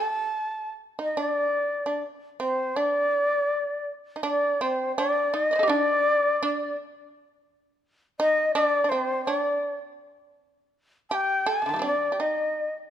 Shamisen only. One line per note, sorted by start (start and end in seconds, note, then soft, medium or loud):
0.00 0.70 A4 medium
0.99 1.15 D#4 medium
1.17 1.82 D4 medium
1.86 2.02 D4 medium
2.40 2.73 C4 medium
2.76 3.83 D4 medium
4.16 4.23 D#4 soft
4.23 4.57 D4 medium
4.61 4.94 C4 medium
4.98 5.31 D4 medium
5.34 5.52 D#4 medium
5.51 5.55 D5 soft
5.51 5.64 D#5 soft
5.56 5.67 A4 soft
5.56 5.59 C5 soft
5.63 5.69 G4 medium
5.68 6.37 D4 medium
5.68 5.81 D#4 medium
6.43 6.75 D4 medium
8.20 8.52 D#4 medium
8.55 8.82 D4 medium
8.84 8.90 D4 medium
8.92 9.24 C4 medium
9.27 9.78 D4 medium
11.11 11.44 G4 medium
11.46 11.80 A4 medium
11.62 11.66 C3 soft
11.66 11.73 D3 soft
11.66 11.82 D#3 soft
11.74 11.86 G3 soft
11.74 11.79 A3 soft
11.79 11.93 C4 soft
11.79 12.08 D4 medium
12.12 12.18 G4 soft
12.20 12.67 D#4 medium